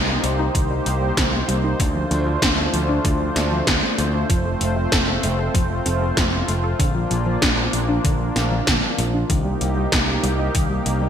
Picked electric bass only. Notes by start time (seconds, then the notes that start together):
Already playing: C2
0.24 C2
0.55 C2
0.86 C2
1.17 C2
1.49 C2
1.80 D2
2.11 D2
2.42 D2
2.74 D2
3.05 D2
3.36 D2
3.67 D2
3.98 D2
4.30 F1
4.61 F1
4.92 F1
5.23 F1
5.55 F1
5.86 F1
6.17 F1
6.48 F1
6.80 A#1
7.11 A#1
7.42 A#1
7.73 A#1
8.05 A#1
8.36 A#1
8.67 A#1
8.98 A#1
9.30 C2
9.61 C2
9.92 C2
10.23 C2
10.55 C2
10.86 C2